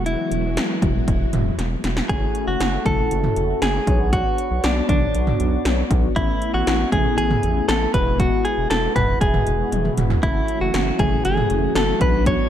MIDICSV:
0, 0, Header, 1, 6, 480
1, 0, Start_track
1, 0, Tempo, 508475
1, 58, Time_signature, 4, 2, 24, 8
1, 11791, End_track
2, 0, Start_track
2, 0, Title_t, "Clean electric guitar"
2, 0, Program_c, 0, 27
2, 58, Note_on_c, 0, 64, 85
2, 1460, Note_off_c, 0, 64, 0
2, 1977, Note_on_c, 0, 68, 108
2, 2333, Note_off_c, 0, 68, 0
2, 2337, Note_on_c, 0, 66, 101
2, 2696, Note_off_c, 0, 66, 0
2, 2700, Note_on_c, 0, 69, 106
2, 3416, Note_off_c, 0, 69, 0
2, 3420, Note_on_c, 0, 68, 109
2, 3893, Note_off_c, 0, 68, 0
2, 3897, Note_on_c, 0, 66, 106
2, 4379, Note_on_c, 0, 62, 89
2, 4392, Note_off_c, 0, 66, 0
2, 4605, Note_off_c, 0, 62, 0
2, 4616, Note_on_c, 0, 62, 83
2, 5539, Note_off_c, 0, 62, 0
2, 5816, Note_on_c, 0, 64, 91
2, 6151, Note_off_c, 0, 64, 0
2, 6176, Note_on_c, 0, 66, 92
2, 6531, Note_off_c, 0, 66, 0
2, 6534, Note_on_c, 0, 68, 91
2, 6764, Note_off_c, 0, 68, 0
2, 6775, Note_on_c, 0, 68, 109
2, 7250, Note_off_c, 0, 68, 0
2, 7254, Note_on_c, 0, 69, 107
2, 7491, Note_off_c, 0, 69, 0
2, 7495, Note_on_c, 0, 71, 105
2, 7719, Note_off_c, 0, 71, 0
2, 7737, Note_on_c, 0, 66, 107
2, 7974, Note_on_c, 0, 68, 96
2, 7985, Note_off_c, 0, 66, 0
2, 8211, Note_off_c, 0, 68, 0
2, 8214, Note_on_c, 0, 69, 103
2, 8451, Note_off_c, 0, 69, 0
2, 8455, Note_on_c, 0, 71, 95
2, 8691, Note_off_c, 0, 71, 0
2, 8694, Note_on_c, 0, 68, 91
2, 9378, Note_off_c, 0, 68, 0
2, 9658, Note_on_c, 0, 64, 91
2, 9993, Note_off_c, 0, 64, 0
2, 10019, Note_on_c, 0, 66, 89
2, 10380, Note_on_c, 0, 68, 92
2, 10389, Note_off_c, 0, 66, 0
2, 10610, Note_off_c, 0, 68, 0
2, 10621, Note_on_c, 0, 68, 104
2, 11097, Note_off_c, 0, 68, 0
2, 11101, Note_on_c, 0, 69, 102
2, 11338, Note_off_c, 0, 69, 0
2, 11342, Note_on_c, 0, 71, 103
2, 11563, Note_off_c, 0, 71, 0
2, 11582, Note_on_c, 0, 73, 116
2, 11791, Note_off_c, 0, 73, 0
2, 11791, End_track
3, 0, Start_track
3, 0, Title_t, "Analog polysynth"
3, 0, Program_c, 1, 90
3, 1977, Note_on_c, 1, 66, 74
3, 1978, Note_on_c, 1, 61, 62
3, 1978, Note_on_c, 1, 64, 63
3, 1979, Note_on_c, 1, 57, 69
3, 3624, Note_off_c, 1, 61, 0
3, 3624, Note_off_c, 1, 64, 0
3, 3624, Note_off_c, 1, 66, 0
3, 3625, Note_off_c, 1, 57, 0
3, 3656, Note_on_c, 1, 66, 78
3, 3657, Note_on_c, 1, 59, 69
3, 3657, Note_on_c, 1, 62, 62
3, 3657, Note_on_c, 1, 73, 65
3, 5779, Note_off_c, 1, 59, 0
3, 5779, Note_off_c, 1, 62, 0
3, 5779, Note_off_c, 1, 66, 0
3, 5779, Note_off_c, 1, 73, 0
3, 5817, Note_on_c, 1, 61, 64
3, 5818, Note_on_c, 1, 57, 68
3, 5818, Note_on_c, 1, 59, 65
3, 5818, Note_on_c, 1, 64, 78
3, 7464, Note_off_c, 1, 57, 0
3, 7464, Note_off_c, 1, 59, 0
3, 7464, Note_off_c, 1, 61, 0
3, 7464, Note_off_c, 1, 64, 0
3, 7497, Note_on_c, 1, 56, 71
3, 7498, Note_on_c, 1, 59, 64
3, 7498, Note_on_c, 1, 64, 64
3, 7498, Note_on_c, 1, 66, 77
3, 9620, Note_off_c, 1, 56, 0
3, 9620, Note_off_c, 1, 59, 0
3, 9620, Note_off_c, 1, 64, 0
3, 9620, Note_off_c, 1, 66, 0
3, 9657, Note_on_c, 1, 61, 64
3, 9657, Note_on_c, 1, 64, 62
3, 9658, Note_on_c, 1, 57, 68
3, 9658, Note_on_c, 1, 66, 75
3, 11304, Note_off_c, 1, 57, 0
3, 11304, Note_off_c, 1, 61, 0
3, 11304, Note_off_c, 1, 64, 0
3, 11304, Note_off_c, 1, 66, 0
3, 11338, Note_on_c, 1, 59, 72
3, 11338, Note_on_c, 1, 62, 63
3, 11338, Note_on_c, 1, 66, 79
3, 11791, Note_off_c, 1, 59, 0
3, 11791, Note_off_c, 1, 62, 0
3, 11791, Note_off_c, 1, 66, 0
3, 11791, End_track
4, 0, Start_track
4, 0, Title_t, "String machine"
4, 0, Program_c, 2, 50
4, 0, Note_on_c, 2, 52, 73
4, 0, Note_on_c, 2, 54, 74
4, 0, Note_on_c, 2, 56, 73
4, 0, Note_on_c, 2, 59, 73
4, 0, Note_on_c, 2, 66, 88
4, 1939, Note_off_c, 2, 52, 0
4, 1940, Note_off_c, 2, 59, 0
4, 1956, Note_off_c, 2, 54, 0
4, 1956, Note_off_c, 2, 56, 0
4, 1956, Note_off_c, 2, 66, 0
4, 9656, Note_on_c, 2, 64, 74
4, 9657, Note_on_c, 2, 52, 78
4, 9657, Note_on_c, 2, 54, 73
4, 9657, Note_on_c, 2, 57, 74
4, 9657, Note_on_c, 2, 66, 86
4, 11320, Note_off_c, 2, 52, 0
4, 11320, Note_off_c, 2, 57, 0
4, 11337, Note_on_c, 2, 50, 78
4, 11337, Note_on_c, 2, 59, 74
4, 11791, Note_off_c, 2, 50, 0
4, 11791, Note_off_c, 2, 54, 0
4, 11791, Note_off_c, 2, 59, 0
4, 11791, Note_off_c, 2, 64, 0
4, 11791, Note_off_c, 2, 66, 0
4, 11791, End_track
5, 0, Start_track
5, 0, Title_t, "Analog synth bass"
5, 0, Program_c, 3, 38
5, 0, Note_on_c, 3, 28, 98
5, 153, Note_off_c, 3, 28, 0
5, 297, Note_on_c, 3, 28, 101
5, 549, Note_off_c, 3, 28, 0
5, 776, Note_on_c, 3, 28, 99
5, 945, Note_off_c, 3, 28, 0
5, 1017, Note_on_c, 3, 28, 103
5, 1185, Note_off_c, 3, 28, 0
5, 1255, Note_on_c, 3, 28, 105
5, 1424, Note_off_c, 3, 28, 0
5, 1496, Note_on_c, 3, 28, 102
5, 1664, Note_off_c, 3, 28, 0
5, 1737, Note_on_c, 3, 28, 105
5, 1905, Note_off_c, 3, 28, 0
5, 1977, Note_on_c, 3, 30, 108
5, 2145, Note_off_c, 3, 30, 0
5, 2336, Note_on_c, 3, 30, 95
5, 2421, Note_off_c, 3, 30, 0
5, 2456, Note_on_c, 3, 30, 104
5, 2625, Note_off_c, 3, 30, 0
5, 2696, Note_on_c, 3, 30, 101
5, 2865, Note_off_c, 3, 30, 0
5, 2936, Note_on_c, 3, 30, 116
5, 3105, Note_off_c, 3, 30, 0
5, 3176, Note_on_c, 3, 30, 104
5, 3344, Note_off_c, 3, 30, 0
5, 3417, Note_on_c, 3, 30, 103
5, 3585, Note_off_c, 3, 30, 0
5, 3656, Note_on_c, 3, 35, 102
5, 3992, Note_off_c, 3, 35, 0
5, 4258, Note_on_c, 3, 35, 93
5, 4342, Note_off_c, 3, 35, 0
5, 4378, Note_on_c, 3, 35, 101
5, 4546, Note_off_c, 3, 35, 0
5, 4616, Note_on_c, 3, 35, 107
5, 4784, Note_off_c, 3, 35, 0
5, 4857, Note_on_c, 3, 35, 103
5, 5025, Note_off_c, 3, 35, 0
5, 5097, Note_on_c, 3, 35, 96
5, 5265, Note_off_c, 3, 35, 0
5, 5337, Note_on_c, 3, 35, 112
5, 5505, Note_off_c, 3, 35, 0
5, 5576, Note_on_c, 3, 35, 102
5, 5744, Note_off_c, 3, 35, 0
5, 5817, Note_on_c, 3, 33, 106
5, 5985, Note_off_c, 3, 33, 0
5, 6176, Note_on_c, 3, 33, 98
5, 6261, Note_off_c, 3, 33, 0
5, 6297, Note_on_c, 3, 33, 100
5, 6465, Note_off_c, 3, 33, 0
5, 6535, Note_on_c, 3, 33, 101
5, 6704, Note_off_c, 3, 33, 0
5, 6778, Note_on_c, 3, 33, 104
5, 6946, Note_off_c, 3, 33, 0
5, 7018, Note_on_c, 3, 33, 96
5, 7186, Note_off_c, 3, 33, 0
5, 7258, Note_on_c, 3, 33, 106
5, 7426, Note_off_c, 3, 33, 0
5, 7496, Note_on_c, 3, 28, 107
5, 7832, Note_off_c, 3, 28, 0
5, 8098, Note_on_c, 3, 28, 98
5, 8182, Note_off_c, 3, 28, 0
5, 8218, Note_on_c, 3, 28, 100
5, 8386, Note_off_c, 3, 28, 0
5, 8456, Note_on_c, 3, 28, 107
5, 8625, Note_off_c, 3, 28, 0
5, 8697, Note_on_c, 3, 28, 105
5, 8865, Note_off_c, 3, 28, 0
5, 8936, Note_on_c, 3, 28, 100
5, 9105, Note_off_c, 3, 28, 0
5, 9178, Note_on_c, 3, 28, 105
5, 9346, Note_off_c, 3, 28, 0
5, 9417, Note_on_c, 3, 28, 105
5, 9585, Note_off_c, 3, 28, 0
5, 9657, Note_on_c, 3, 30, 108
5, 9825, Note_off_c, 3, 30, 0
5, 10016, Note_on_c, 3, 30, 97
5, 10101, Note_off_c, 3, 30, 0
5, 10137, Note_on_c, 3, 30, 102
5, 10305, Note_off_c, 3, 30, 0
5, 10377, Note_on_c, 3, 30, 98
5, 10545, Note_off_c, 3, 30, 0
5, 10618, Note_on_c, 3, 30, 114
5, 10786, Note_off_c, 3, 30, 0
5, 10858, Note_on_c, 3, 30, 99
5, 11026, Note_off_c, 3, 30, 0
5, 11096, Note_on_c, 3, 30, 106
5, 11265, Note_off_c, 3, 30, 0
5, 11336, Note_on_c, 3, 35, 99
5, 11672, Note_off_c, 3, 35, 0
5, 11791, End_track
6, 0, Start_track
6, 0, Title_t, "Drums"
6, 58, Note_on_c, 9, 42, 77
6, 152, Note_off_c, 9, 42, 0
6, 298, Note_on_c, 9, 42, 65
6, 392, Note_off_c, 9, 42, 0
6, 539, Note_on_c, 9, 42, 79
6, 540, Note_on_c, 9, 38, 108
6, 633, Note_off_c, 9, 42, 0
6, 634, Note_off_c, 9, 38, 0
6, 776, Note_on_c, 9, 36, 93
6, 777, Note_on_c, 9, 47, 88
6, 778, Note_on_c, 9, 42, 58
6, 871, Note_off_c, 9, 36, 0
6, 872, Note_off_c, 9, 42, 0
6, 872, Note_off_c, 9, 47, 0
6, 1017, Note_on_c, 9, 36, 100
6, 1018, Note_on_c, 9, 42, 80
6, 1111, Note_off_c, 9, 36, 0
6, 1112, Note_off_c, 9, 42, 0
6, 1256, Note_on_c, 9, 42, 69
6, 1258, Note_on_c, 9, 45, 100
6, 1350, Note_off_c, 9, 42, 0
6, 1352, Note_off_c, 9, 45, 0
6, 1497, Note_on_c, 9, 38, 60
6, 1500, Note_on_c, 9, 42, 77
6, 1592, Note_off_c, 9, 38, 0
6, 1594, Note_off_c, 9, 42, 0
6, 1737, Note_on_c, 9, 38, 88
6, 1737, Note_on_c, 9, 42, 72
6, 1831, Note_off_c, 9, 42, 0
6, 1832, Note_off_c, 9, 38, 0
6, 1856, Note_on_c, 9, 38, 89
6, 1951, Note_off_c, 9, 38, 0
6, 1977, Note_on_c, 9, 36, 120
6, 1977, Note_on_c, 9, 42, 78
6, 2071, Note_off_c, 9, 36, 0
6, 2072, Note_off_c, 9, 42, 0
6, 2217, Note_on_c, 9, 42, 68
6, 2312, Note_off_c, 9, 42, 0
6, 2459, Note_on_c, 9, 42, 80
6, 2460, Note_on_c, 9, 38, 110
6, 2553, Note_off_c, 9, 42, 0
6, 2554, Note_off_c, 9, 38, 0
6, 2696, Note_on_c, 9, 36, 93
6, 2697, Note_on_c, 9, 47, 90
6, 2698, Note_on_c, 9, 42, 60
6, 2791, Note_off_c, 9, 36, 0
6, 2792, Note_off_c, 9, 42, 0
6, 2792, Note_off_c, 9, 47, 0
6, 2937, Note_on_c, 9, 42, 80
6, 3032, Note_off_c, 9, 42, 0
6, 3056, Note_on_c, 9, 45, 90
6, 3150, Note_off_c, 9, 45, 0
6, 3176, Note_on_c, 9, 42, 69
6, 3270, Note_off_c, 9, 42, 0
6, 3416, Note_on_c, 9, 38, 125
6, 3419, Note_on_c, 9, 42, 80
6, 3511, Note_off_c, 9, 38, 0
6, 3514, Note_off_c, 9, 42, 0
6, 3656, Note_on_c, 9, 36, 108
6, 3656, Note_on_c, 9, 42, 76
6, 3750, Note_off_c, 9, 36, 0
6, 3751, Note_off_c, 9, 42, 0
6, 3897, Note_on_c, 9, 36, 116
6, 3897, Note_on_c, 9, 42, 76
6, 3991, Note_off_c, 9, 36, 0
6, 3992, Note_off_c, 9, 42, 0
6, 4138, Note_on_c, 9, 42, 67
6, 4232, Note_off_c, 9, 42, 0
6, 4377, Note_on_c, 9, 42, 78
6, 4378, Note_on_c, 9, 38, 110
6, 4471, Note_off_c, 9, 42, 0
6, 4473, Note_off_c, 9, 38, 0
6, 4616, Note_on_c, 9, 36, 91
6, 4617, Note_on_c, 9, 47, 90
6, 4618, Note_on_c, 9, 42, 59
6, 4710, Note_off_c, 9, 36, 0
6, 4712, Note_off_c, 9, 42, 0
6, 4712, Note_off_c, 9, 47, 0
6, 4857, Note_on_c, 9, 42, 83
6, 4952, Note_off_c, 9, 42, 0
6, 4976, Note_on_c, 9, 45, 88
6, 5070, Note_off_c, 9, 45, 0
6, 5096, Note_on_c, 9, 42, 72
6, 5190, Note_off_c, 9, 42, 0
6, 5336, Note_on_c, 9, 38, 126
6, 5340, Note_on_c, 9, 42, 78
6, 5431, Note_off_c, 9, 38, 0
6, 5434, Note_off_c, 9, 42, 0
6, 5576, Note_on_c, 9, 36, 111
6, 5576, Note_on_c, 9, 42, 77
6, 5670, Note_off_c, 9, 36, 0
6, 5670, Note_off_c, 9, 42, 0
6, 5817, Note_on_c, 9, 36, 112
6, 5817, Note_on_c, 9, 42, 77
6, 5911, Note_off_c, 9, 36, 0
6, 5911, Note_off_c, 9, 42, 0
6, 6058, Note_on_c, 9, 42, 67
6, 6152, Note_off_c, 9, 42, 0
6, 6298, Note_on_c, 9, 42, 82
6, 6299, Note_on_c, 9, 38, 109
6, 6392, Note_off_c, 9, 42, 0
6, 6394, Note_off_c, 9, 38, 0
6, 6536, Note_on_c, 9, 36, 88
6, 6536, Note_on_c, 9, 47, 86
6, 6537, Note_on_c, 9, 42, 62
6, 6630, Note_off_c, 9, 36, 0
6, 6630, Note_off_c, 9, 47, 0
6, 6631, Note_off_c, 9, 42, 0
6, 6777, Note_on_c, 9, 42, 81
6, 6871, Note_off_c, 9, 42, 0
6, 6895, Note_on_c, 9, 45, 86
6, 6990, Note_off_c, 9, 45, 0
6, 7015, Note_on_c, 9, 42, 69
6, 7110, Note_off_c, 9, 42, 0
6, 7256, Note_on_c, 9, 38, 125
6, 7259, Note_on_c, 9, 42, 75
6, 7350, Note_off_c, 9, 38, 0
6, 7353, Note_off_c, 9, 42, 0
6, 7496, Note_on_c, 9, 36, 105
6, 7496, Note_on_c, 9, 42, 77
6, 7590, Note_off_c, 9, 36, 0
6, 7590, Note_off_c, 9, 42, 0
6, 7737, Note_on_c, 9, 36, 115
6, 7738, Note_on_c, 9, 42, 77
6, 7831, Note_off_c, 9, 36, 0
6, 7832, Note_off_c, 9, 42, 0
6, 7978, Note_on_c, 9, 42, 64
6, 8072, Note_off_c, 9, 42, 0
6, 8218, Note_on_c, 9, 42, 79
6, 8219, Note_on_c, 9, 38, 109
6, 8313, Note_off_c, 9, 42, 0
6, 8314, Note_off_c, 9, 38, 0
6, 8456, Note_on_c, 9, 36, 88
6, 8457, Note_on_c, 9, 45, 87
6, 8457, Note_on_c, 9, 56, 64
6, 8458, Note_on_c, 9, 42, 62
6, 8551, Note_off_c, 9, 36, 0
6, 8552, Note_off_c, 9, 42, 0
6, 8552, Note_off_c, 9, 45, 0
6, 8552, Note_off_c, 9, 56, 0
6, 8697, Note_on_c, 9, 36, 97
6, 8698, Note_on_c, 9, 42, 82
6, 8792, Note_off_c, 9, 36, 0
6, 8793, Note_off_c, 9, 42, 0
6, 8816, Note_on_c, 9, 45, 87
6, 8910, Note_off_c, 9, 45, 0
6, 8936, Note_on_c, 9, 42, 72
6, 9030, Note_off_c, 9, 42, 0
6, 9177, Note_on_c, 9, 48, 63
6, 9180, Note_on_c, 9, 42, 79
6, 9271, Note_off_c, 9, 48, 0
6, 9274, Note_off_c, 9, 42, 0
6, 9297, Note_on_c, 9, 47, 67
6, 9391, Note_off_c, 9, 47, 0
6, 9416, Note_on_c, 9, 42, 78
6, 9417, Note_on_c, 9, 45, 95
6, 9511, Note_off_c, 9, 42, 0
6, 9512, Note_off_c, 9, 45, 0
6, 9537, Note_on_c, 9, 43, 98
6, 9631, Note_off_c, 9, 43, 0
6, 9657, Note_on_c, 9, 36, 117
6, 9657, Note_on_c, 9, 42, 76
6, 9751, Note_off_c, 9, 36, 0
6, 9752, Note_off_c, 9, 42, 0
6, 9897, Note_on_c, 9, 42, 65
6, 9991, Note_off_c, 9, 42, 0
6, 10138, Note_on_c, 9, 42, 79
6, 10139, Note_on_c, 9, 38, 111
6, 10233, Note_off_c, 9, 42, 0
6, 10234, Note_off_c, 9, 38, 0
6, 10376, Note_on_c, 9, 36, 95
6, 10377, Note_on_c, 9, 47, 91
6, 10378, Note_on_c, 9, 42, 61
6, 10471, Note_off_c, 9, 36, 0
6, 10472, Note_off_c, 9, 42, 0
6, 10472, Note_off_c, 9, 47, 0
6, 10618, Note_on_c, 9, 42, 82
6, 10713, Note_off_c, 9, 42, 0
6, 10736, Note_on_c, 9, 45, 88
6, 10830, Note_off_c, 9, 45, 0
6, 10855, Note_on_c, 9, 42, 70
6, 10950, Note_off_c, 9, 42, 0
6, 11096, Note_on_c, 9, 38, 126
6, 11099, Note_on_c, 9, 42, 76
6, 11191, Note_off_c, 9, 38, 0
6, 11194, Note_off_c, 9, 42, 0
6, 11336, Note_on_c, 9, 36, 109
6, 11336, Note_on_c, 9, 42, 74
6, 11430, Note_off_c, 9, 36, 0
6, 11430, Note_off_c, 9, 42, 0
6, 11577, Note_on_c, 9, 36, 114
6, 11577, Note_on_c, 9, 42, 80
6, 11671, Note_off_c, 9, 36, 0
6, 11671, Note_off_c, 9, 42, 0
6, 11791, End_track
0, 0, End_of_file